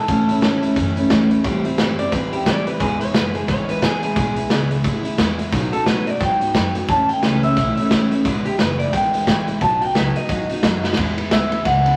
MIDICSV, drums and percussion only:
0, 0, Header, 1, 2, 480
1, 0, Start_track
1, 0, Tempo, 340329
1, 118, Time_signature, 4, 2, 24, 8
1, 16874, End_track
2, 0, Start_track
2, 0, Title_t, "Drums"
2, 116, Note_on_c, 9, 42, 79
2, 118, Note_on_c, 9, 36, 110
2, 257, Note_off_c, 9, 42, 0
2, 259, Note_off_c, 9, 36, 0
2, 408, Note_on_c, 9, 42, 70
2, 549, Note_off_c, 9, 42, 0
2, 597, Note_on_c, 9, 38, 106
2, 597, Note_on_c, 9, 42, 67
2, 738, Note_off_c, 9, 38, 0
2, 738, Note_off_c, 9, 42, 0
2, 886, Note_on_c, 9, 42, 60
2, 1027, Note_off_c, 9, 42, 0
2, 1074, Note_on_c, 9, 38, 33
2, 1074, Note_on_c, 9, 42, 89
2, 1077, Note_on_c, 9, 36, 105
2, 1215, Note_off_c, 9, 38, 0
2, 1215, Note_off_c, 9, 42, 0
2, 1218, Note_off_c, 9, 36, 0
2, 1366, Note_on_c, 9, 42, 61
2, 1507, Note_off_c, 9, 42, 0
2, 1553, Note_on_c, 9, 38, 118
2, 1553, Note_on_c, 9, 42, 93
2, 1557, Note_on_c, 9, 36, 91
2, 1694, Note_off_c, 9, 38, 0
2, 1694, Note_off_c, 9, 42, 0
2, 1698, Note_off_c, 9, 36, 0
2, 1843, Note_on_c, 9, 42, 64
2, 1984, Note_off_c, 9, 42, 0
2, 2036, Note_on_c, 9, 36, 120
2, 2036, Note_on_c, 9, 42, 83
2, 2177, Note_off_c, 9, 36, 0
2, 2177, Note_off_c, 9, 42, 0
2, 2323, Note_on_c, 9, 42, 66
2, 2465, Note_off_c, 9, 42, 0
2, 2513, Note_on_c, 9, 38, 112
2, 2513, Note_on_c, 9, 42, 75
2, 2654, Note_off_c, 9, 38, 0
2, 2654, Note_off_c, 9, 42, 0
2, 2802, Note_on_c, 9, 42, 68
2, 2943, Note_off_c, 9, 42, 0
2, 2993, Note_on_c, 9, 38, 31
2, 2993, Note_on_c, 9, 42, 91
2, 2995, Note_on_c, 9, 36, 110
2, 3134, Note_off_c, 9, 38, 0
2, 3134, Note_off_c, 9, 42, 0
2, 3136, Note_off_c, 9, 36, 0
2, 3283, Note_on_c, 9, 42, 62
2, 3424, Note_off_c, 9, 42, 0
2, 3475, Note_on_c, 9, 36, 80
2, 3475, Note_on_c, 9, 38, 112
2, 3475, Note_on_c, 9, 42, 90
2, 3616, Note_off_c, 9, 36, 0
2, 3616, Note_off_c, 9, 38, 0
2, 3616, Note_off_c, 9, 42, 0
2, 3762, Note_on_c, 9, 42, 63
2, 3903, Note_off_c, 9, 42, 0
2, 3952, Note_on_c, 9, 42, 77
2, 3954, Note_on_c, 9, 36, 117
2, 4093, Note_off_c, 9, 42, 0
2, 4095, Note_off_c, 9, 36, 0
2, 4243, Note_on_c, 9, 42, 67
2, 4384, Note_off_c, 9, 42, 0
2, 4435, Note_on_c, 9, 38, 111
2, 4435, Note_on_c, 9, 42, 78
2, 4576, Note_off_c, 9, 38, 0
2, 4576, Note_off_c, 9, 42, 0
2, 4722, Note_on_c, 9, 42, 63
2, 4863, Note_off_c, 9, 42, 0
2, 4911, Note_on_c, 9, 38, 31
2, 4911, Note_on_c, 9, 42, 75
2, 4913, Note_on_c, 9, 36, 105
2, 5052, Note_off_c, 9, 38, 0
2, 5052, Note_off_c, 9, 42, 0
2, 5054, Note_off_c, 9, 36, 0
2, 5203, Note_on_c, 9, 42, 57
2, 5344, Note_off_c, 9, 42, 0
2, 5392, Note_on_c, 9, 36, 74
2, 5395, Note_on_c, 9, 38, 117
2, 5395, Note_on_c, 9, 42, 89
2, 5533, Note_off_c, 9, 36, 0
2, 5536, Note_off_c, 9, 38, 0
2, 5536, Note_off_c, 9, 42, 0
2, 5680, Note_on_c, 9, 42, 69
2, 5821, Note_off_c, 9, 42, 0
2, 5871, Note_on_c, 9, 36, 126
2, 5871, Note_on_c, 9, 42, 92
2, 6012, Note_off_c, 9, 36, 0
2, 6012, Note_off_c, 9, 42, 0
2, 6155, Note_on_c, 9, 42, 68
2, 6296, Note_off_c, 9, 42, 0
2, 6349, Note_on_c, 9, 38, 95
2, 6349, Note_on_c, 9, 42, 81
2, 6491, Note_off_c, 9, 38, 0
2, 6491, Note_off_c, 9, 42, 0
2, 6640, Note_on_c, 9, 42, 62
2, 6781, Note_off_c, 9, 42, 0
2, 6832, Note_on_c, 9, 36, 116
2, 6832, Note_on_c, 9, 42, 91
2, 6973, Note_off_c, 9, 36, 0
2, 6973, Note_off_c, 9, 42, 0
2, 7122, Note_on_c, 9, 42, 68
2, 7263, Note_off_c, 9, 42, 0
2, 7311, Note_on_c, 9, 36, 76
2, 7311, Note_on_c, 9, 38, 115
2, 7311, Note_on_c, 9, 42, 92
2, 7452, Note_off_c, 9, 36, 0
2, 7452, Note_off_c, 9, 38, 0
2, 7452, Note_off_c, 9, 42, 0
2, 7600, Note_on_c, 9, 42, 67
2, 7741, Note_off_c, 9, 42, 0
2, 7792, Note_on_c, 9, 36, 121
2, 7793, Note_on_c, 9, 42, 85
2, 7933, Note_off_c, 9, 36, 0
2, 7934, Note_off_c, 9, 42, 0
2, 8082, Note_on_c, 9, 42, 72
2, 8223, Note_off_c, 9, 42, 0
2, 8271, Note_on_c, 9, 38, 101
2, 8271, Note_on_c, 9, 42, 84
2, 8412, Note_off_c, 9, 38, 0
2, 8412, Note_off_c, 9, 42, 0
2, 8562, Note_on_c, 9, 42, 57
2, 8703, Note_off_c, 9, 42, 0
2, 8753, Note_on_c, 9, 36, 109
2, 8754, Note_on_c, 9, 38, 32
2, 8754, Note_on_c, 9, 42, 77
2, 8894, Note_off_c, 9, 36, 0
2, 8895, Note_off_c, 9, 38, 0
2, 8895, Note_off_c, 9, 42, 0
2, 9041, Note_on_c, 9, 42, 54
2, 9182, Note_off_c, 9, 42, 0
2, 9233, Note_on_c, 9, 36, 85
2, 9233, Note_on_c, 9, 38, 115
2, 9233, Note_on_c, 9, 42, 79
2, 9374, Note_off_c, 9, 36, 0
2, 9374, Note_off_c, 9, 38, 0
2, 9374, Note_off_c, 9, 42, 0
2, 9520, Note_on_c, 9, 42, 65
2, 9661, Note_off_c, 9, 42, 0
2, 9710, Note_on_c, 9, 42, 75
2, 9712, Note_on_c, 9, 36, 110
2, 9851, Note_off_c, 9, 42, 0
2, 9853, Note_off_c, 9, 36, 0
2, 9999, Note_on_c, 9, 42, 70
2, 10140, Note_off_c, 9, 42, 0
2, 10192, Note_on_c, 9, 38, 107
2, 10192, Note_on_c, 9, 42, 83
2, 10333, Note_off_c, 9, 38, 0
2, 10333, Note_off_c, 9, 42, 0
2, 10483, Note_on_c, 9, 42, 63
2, 10624, Note_off_c, 9, 42, 0
2, 10672, Note_on_c, 9, 38, 35
2, 10672, Note_on_c, 9, 42, 84
2, 10675, Note_on_c, 9, 36, 107
2, 10813, Note_off_c, 9, 38, 0
2, 10813, Note_off_c, 9, 42, 0
2, 10816, Note_off_c, 9, 36, 0
2, 10964, Note_on_c, 9, 42, 73
2, 11105, Note_off_c, 9, 42, 0
2, 11154, Note_on_c, 9, 38, 117
2, 11154, Note_on_c, 9, 42, 84
2, 11157, Note_on_c, 9, 36, 83
2, 11295, Note_off_c, 9, 38, 0
2, 11295, Note_off_c, 9, 42, 0
2, 11298, Note_off_c, 9, 36, 0
2, 11448, Note_on_c, 9, 42, 66
2, 11589, Note_off_c, 9, 42, 0
2, 11636, Note_on_c, 9, 42, 92
2, 11637, Note_on_c, 9, 36, 116
2, 11777, Note_off_c, 9, 42, 0
2, 11778, Note_off_c, 9, 36, 0
2, 11924, Note_on_c, 9, 42, 68
2, 12065, Note_off_c, 9, 42, 0
2, 12115, Note_on_c, 9, 38, 100
2, 12115, Note_on_c, 9, 42, 81
2, 12256, Note_off_c, 9, 38, 0
2, 12256, Note_off_c, 9, 42, 0
2, 12405, Note_on_c, 9, 42, 65
2, 12546, Note_off_c, 9, 42, 0
2, 12597, Note_on_c, 9, 36, 96
2, 12598, Note_on_c, 9, 38, 30
2, 12598, Note_on_c, 9, 42, 85
2, 12738, Note_off_c, 9, 36, 0
2, 12739, Note_off_c, 9, 38, 0
2, 12739, Note_off_c, 9, 42, 0
2, 12888, Note_on_c, 9, 42, 64
2, 13029, Note_off_c, 9, 42, 0
2, 13077, Note_on_c, 9, 36, 81
2, 13080, Note_on_c, 9, 38, 127
2, 13080, Note_on_c, 9, 42, 81
2, 13218, Note_off_c, 9, 36, 0
2, 13221, Note_off_c, 9, 38, 0
2, 13221, Note_off_c, 9, 42, 0
2, 13367, Note_on_c, 9, 42, 60
2, 13508, Note_off_c, 9, 42, 0
2, 13556, Note_on_c, 9, 36, 106
2, 13557, Note_on_c, 9, 42, 78
2, 13697, Note_off_c, 9, 36, 0
2, 13698, Note_off_c, 9, 42, 0
2, 13846, Note_on_c, 9, 42, 65
2, 13987, Note_off_c, 9, 42, 0
2, 14036, Note_on_c, 9, 38, 109
2, 14036, Note_on_c, 9, 42, 79
2, 14177, Note_off_c, 9, 38, 0
2, 14177, Note_off_c, 9, 42, 0
2, 14325, Note_on_c, 9, 42, 62
2, 14466, Note_off_c, 9, 42, 0
2, 14515, Note_on_c, 9, 36, 113
2, 14515, Note_on_c, 9, 42, 86
2, 14656, Note_off_c, 9, 36, 0
2, 14656, Note_off_c, 9, 42, 0
2, 14802, Note_on_c, 9, 42, 71
2, 14943, Note_off_c, 9, 42, 0
2, 14992, Note_on_c, 9, 38, 120
2, 14992, Note_on_c, 9, 42, 85
2, 14994, Note_on_c, 9, 36, 76
2, 15133, Note_off_c, 9, 38, 0
2, 15133, Note_off_c, 9, 42, 0
2, 15135, Note_off_c, 9, 36, 0
2, 15286, Note_on_c, 9, 38, 65
2, 15412, Note_off_c, 9, 38, 0
2, 15412, Note_on_c, 9, 38, 88
2, 15475, Note_on_c, 9, 51, 96
2, 15476, Note_on_c, 9, 36, 105
2, 15553, Note_off_c, 9, 38, 0
2, 15616, Note_off_c, 9, 51, 0
2, 15617, Note_off_c, 9, 36, 0
2, 15764, Note_on_c, 9, 51, 64
2, 15905, Note_off_c, 9, 51, 0
2, 15955, Note_on_c, 9, 38, 104
2, 15955, Note_on_c, 9, 51, 76
2, 16096, Note_off_c, 9, 38, 0
2, 16096, Note_off_c, 9, 51, 0
2, 16246, Note_on_c, 9, 51, 58
2, 16387, Note_off_c, 9, 51, 0
2, 16434, Note_on_c, 9, 38, 33
2, 16434, Note_on_c, 9, 51, 76
2, 16436, Note_on_c, 9, 36, 102
2, 16575, Note_off_c, 9, 38, 0
2, 16575, Note_off_c, 9, 51, 0
2, 16577, Note_off_c, 9, 36, 0
2, 16724, Note_on_c, 9, 51, 59
2, 16865, Note_off_c, 9, 51, 0
2, 16874, End_track
0, 0, End_of_file